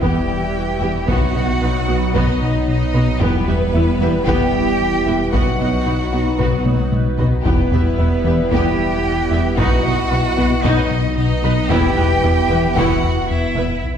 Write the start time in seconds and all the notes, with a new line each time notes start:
Already playing: E1 G3 B3 E4 B4
0.01 E1 E2 E3 B3 G4 G5, taiko
0.29 E2
0.55 E2
0.81 E1 E2 B3 E4 G4 E5
1.07 B1 B2 F#3 B3 D#4 F#4 F#5, taiko
1.34 B1 B2 B3 D#4 F#4 D#5
1.61 B1 B2 B3 D#4 B4
1.88 B1 B2 B3 F#4 D#5
2.14 B1 B2 B3 D#4 F#4 D#5, taiko
2.42 B2
2.68 B2 D#4 D#5
2.94 B1 B2 B3 F#4 B4 D#5
3.20 E1 E2 E3 G3 B3 E4 G4 B4, taiko
3.47 E1 E2 G3 B3 G4 E5
3.73 E1 E2 B3 E4 B4
4.00 E1 E2 E3 B3 G4 E5
4.27 E1 E2 E3 B3 G4 G5, taiko
4.53 E2
4.80 E2
5.06 E1 E2 B3 E4 G4 E5
5.32 B1 B2 F#3 B3 D#4 F#4 B4 F#5, taiko
5.59 B1 B2 B3 D#4 F#4 D#5
5.86 B1 B2 B3 D#4 B4
6.12 B1 B2 B3 F#4 D#5
6.39 B1 B2 B3 F#4, taiko
6.65 B2, taiko high
6.92 B2, taiko high
7.18 B1 B2 B3 F#4 B4 D#5, taiko low
7.45 E1 E2 E3 G3 B3 E4 G4 B4, taiko
7.71 E1 E2 G3 B3 G4 E5
7.98 E1 E2 B3 E4 B4
8.24 E1 E2 E3 B3 G4 E5
8.51 E1 E2 E3 B3 G4 G5, taiko
8.78 E2
9.05 E2
9.31 E1 E2 B3 E4 G4 E5
9.57 B1 B2 F#3 B3 D#4 F#4 D#5 F#5, taiko
9.83 B1 B2 B3 D#4 B4 D#5
10.11 B1 B2 B3 F#4 B4
10.37 B1 B2 B3 F#4 B4 D#5
10.63 B1 B2 B3 D#4 F#4 D#5, taiko
10.91 B2
11.18 B2 D#4 D#5
11.44 B1 B2 B3 B4 D#5
11.70 E1 E2 E3 B3 E4 G4 B4 G5, taiko
11.96 E1 E2 G3 B3 B4 E5
12.22 E1 E2 B3 E4 G4 B4
12.48 E1 E2 E3 B3 B4 E5
12.75 E1 E2 E3 B3 E4 F#4 G4 F#5, taiko
13.04 E2
13.30 E2 E4 E5
13.55 E1 E2 B3 E4 B4 E5
13.83 B1, swell